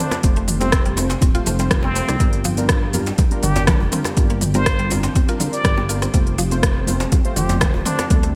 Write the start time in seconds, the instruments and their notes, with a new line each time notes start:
Already playing: ambient pad F3 C4 G4
0.00 synth keys A3 C4 F4 C5, synth arpeggio sound C4, muted trumpet D4
0.11 cross-stick, closed hi-hat, djembe slap, high conga, shaker
0.23 analog synth bass F1, synth keys A3 C4 F4 C5, kick, closed hi-hat, high conga, shaker
0.36 synth arpeggio sound A3, closed hi-hat
0.48 open hi-hat, mid tom, djembe tone, shaker
0.60 synth arpeggio sound G3, synth keys A3 C4 F4 C5, muted trumpet C4, closed hi-hat, high conga, shaker
0.72 kick, cross-stick, closed hi-hat, shaker
0.85 synth arpeggio sound G3, closed hi-hat
0.97 synth keys A3 C4 F4 C5, synth arpeggio sound C4, open hi-hat, djembe tone, high conga, shaker
1.10 synth arpeggio sound C4, closed hi-hat, djembe slap, shaker
1.21 analog synth bass D1, synth arpeggio sound C4, kick, closed hi-hat, high conga, djembe tone, shaker
1.35 synth keys A3 C4 F4 C5, synth arpeggio sound F4, closed hi-hat
1.46 analog synth bass F1, synth arpeggio sound A3, open hi-hat, low conga, shaker
1.59 synth arpeggio sound G3, synth keys A3 C4 F4 C5, closed hi-hat, shaker
1.71 synth arpeggio sound G4, kick, cross-stick, closed hi-hat, mid tom, low conga, shaker
1.83 synth arpeggio sound G3, muted trumpet C4, djembe slap, high conga
1.95 synth keys A3 C4 F4 C5, synth arpeggio sound A3, open hi-hat, shaker
2.08 analog synth bass C2, synth arpeggio sound D4, cross-stick, closed hi-hat, high conga, shaker
2.19 analog synth bass G1, ambient pad G3 D4, synth arpeggio sound G3, synth keys G3 D4 F4 A#4, kick, closed hi-hat, high conga, shaker
2.33 closed hi-hat
2.44 synth arpeggio sound F3, open hi-hat, djembe tone, shaker
2.57 synth keys G3 D4 F4 A#4, closed hi-hat, high conga, shaker
2.69 synth arpeggio sound F3, kick, cross-stick, closed hi-hat, shaker
2.93 synth keys G3 D4 F4 A#4, open hi-hat, djembe tone, high conga, low conga, shaker
3.06 closed hi-hat, djembe slap, shaker
3.18 kick, closed hi-hat, djembe tone, low conga, shaker
3.31 synth keys G3 D4 F4 A#4, closed hi-hat, high conga
3.43 analog synth bass G1, synth arpeggio sound D3, muted trumpet G4, open hi-hat, mid tom, shaker
3.56 closed hi-hat, djembe slap, high conga, djembe tone, shaker
3.67 synth keys G3 D4 F4 A#4, synth arpeggio sound A#3, kick, cross-stick, closed hi-hat, mid tom, djembe slap, low conga, shaker
3.80 analog synth bass F1, djembe tone
3.92 synth keys G3 D4 F4 A#4, synth arpeggio sound C4, open hi-hat, mid tom, shaker
4.04 cross-stick, closed hi-hat, djembe slap, high conga, shaker
4.17 analog synth bass G1, synth keys G3 D4 F4 A#4, ambient pad C4, kick, closed hi-hat, high conga, shaker
4.30 synth arpeggio sound A#3, closed hi-hat
4.41 open hi-hat, mid tom, djembe tone, shaker
4.54 synth keys G3 D4 F4 A#4, synth arpeggio sound G3, muted trumpet C5, closed hi-hat, high conga, shaker
4.66 kick, cross-stick, closed hi-hat, shaker
4.79 synth arpeggio sound G3, closed hi-hat
4.90 synth keys G3 D4 F4 A#4, synth arpeggio sound C4, open hi-hat, high conga, djembe tone, shaker
5.03 synth arpeggio sound C4, closed hi-hat, djembe slap, shaker
5.15 synth arpeggio sound C4, kick, closed hi-hat, high conga, djembe tone, shaker
5.28 synth keys G3 D4 F4 A#4, synth arpeggio sound F4, closed hi-hat
5.40 analog synth bass D2, synth arpeggio sound D3, open hi-hat, low conga, shaker
5.53 muted trumpet D5, closed hi-hat, shaker
5.64 analog synth bass G1, synth keys G3 D4 F4 A#4, synth arpeggio sound G4, kick, cross-stick, closed hi-hat, mid tom, low conga, shaker
5.77 synth arpeggio sound G3, djembe slap, high conga
5.89 synth keys G3 D4 F4 A#4, synth arpeggio sound F4, open hi-hat, shaker
6.02 synth arpeggio sound C4, cross-stick, closed hi-hat, high conga, shaker
6.14 analog synth bass F1, ambient pad F3, synth arpeggio sound G3, synth keys A3 C4 F4 C5, kick, closed hi-hat, high conga, shaker
6.27 closed hi-hat
6.38 synth arpeggio sound F3, open hi-hat, djembe tone, shaker
6.51 synth keys A3 C4 F4 C5, closed hi-hat, high conga, shaker
6.63 synth arpeggio sound F3, kick, cross-stick, closed hi-hat, shaker
6.87 synth keys A3 C4 F4 C5, open hi-hat, high conga, djembe tone, low conga, shaker
7.00 closed hi-hat, djembe slap, shaker
7.12 kick, closed hi-hat, djembe tone, low conga, shaker
7.25 synth keys A3 C4 F4 C5, closed hi-hat, high conga
7.36 analog synth bass F1, synth arpeggio sound D3, muted trumpet G4, open hi-hat, mid tom, shaker
7.49 closed hi-hat, djembe slap, djembe tone, high conga, shaker
7.61 synth arpeggio sound A3, synth keys A3 C4 F4 C5, kick, cross-stick, closed hi-hat, mid tom, djembe slap, low conga, shaker
7.74 analog synth bass D1, djembe tone
7.85 synth keys A3 C4 F4 C5, synth arpeggio sound C4, muted trumpet D4, open hi-hat, mid tom, shaker
7.99 cross-stick, closed hi-hat, djembe slap, high conga, shaker
8.10 analog synth bass D2, ambient pad D3 A3 D4, synth keys G3 A3 D4 A4, kick, closed hi-hat, mid tom, high conga, shaker
8.23 synth arpeggio sound A3, closed hi-hat